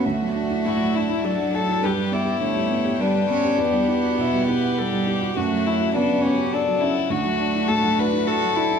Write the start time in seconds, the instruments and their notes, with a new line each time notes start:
Already playing: harp F#4 A4 F#5
0.04 felt piano D2, cello A3, string section D4 F#4 E5, viola F#4
0.21 felt piano F#3
0.35 felt piano D4
0.50 felt piano E4
0.65 felt piano A2, viola E4, violin F#4
0.80 felt piano F#3
0.94 felt piano D4, violin E4
1.08 felt piano E4
1.23 cello F#3, violin D4, viola A4
1.38 felt piano F#3
1.53 felt piano D4, viola A4, violin A4
1.68 felt piano E4
1.82 felt piano G2, cello G3, string section B3 G4 G5, violin G4, viola B4
1.97 felt piano G3
2.11 felt piano B3, violin E4, viola D5
2.25 felt piano G4
2.41 felt piano D3, cello A3, viola C#5
2.55 felt piano G3
2.70 felt piano B3
2.85 felt piano G4
3.00 cello G3, violin D4, viola B4
3.15 felt piano G3
3.28 felt piano B3, cello C#4
3.44 felt piano G4
3.58 felt piano E2, cello B3, viola G4, string section F#5
3.73 felt piano G3
3.88 felt piano E4
4.03 felt piano F#4
4.18 felt piano B2, violin E4, viola F#4
4.33 felt piano G3
4.48 felt piano E4, violin G4, viola B4
4.63 felt piano F#5
4.78 cello G3, viola A4
4.93 felt piano G3
5.07 felt piano E4, viola G4
5.21 felt piano F#4
5.37 felt piano F#2, cello A3, string section C#4 F#4, viola F#4, violin F#4
5.52 felt piano F#3
5.67 felt piano C#4, violin E4
5.81 felt piano F#4
5.95 felt piano C#3, cello B3, violin D4, viola F#4
6.10 felt piano F#3
6.24 violin C#4, felt piano C#4, viola G4
6.39 felt piano F#4
6.53 violin D4, viola A4
6.68 felt piano F#3
6.81 felt piano C#4, violin E4
6.96 felt piano F#4
7.10 felt piano D2, cello A3, string section D4 E5, viola F#4, violin F#4
7.25 felt piano F#3
7.40 felt piano D4
7.55 felt piano E4
7.68 felt piano A2, violin A4
7.83 felt piano F#3
7.98 felt piano D4, violin B4
8.13 felt piano E4
8.27 cello F#4, violin A4
8.43 felt piano F#3
8.56 felt piano D4, cello E4
8.71 felt piano E4